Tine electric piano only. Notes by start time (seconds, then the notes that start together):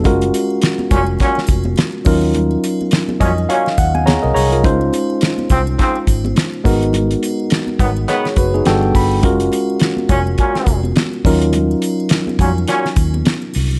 0.04 G#3 C#4 F4 F#4 A#4
2.05 F#3 C#4 D#4 F4 A#4
3.20 D#5
3.49 F5
3.78 F#5
3.95 G#5
4.06 G#4 C#5 A#5
4.22 A#4 D#5
4.34 G#4 C#5 A#5
4.52 F4 A#4
4.63 G#3 C#4 D#4 F4 C5
6.64 G#3 B3 D#4 F#4 A#4
8.09 G#4 C#5
8.38 F#4 B4
8.54 D#4 G#4
8.67 G3 B3 D4 F#4 A4 G5
8.96 B5
9.23 G#3 C#4 F4 F#4 A#4
11.25 F#3 C#4 D#4 F4 A#4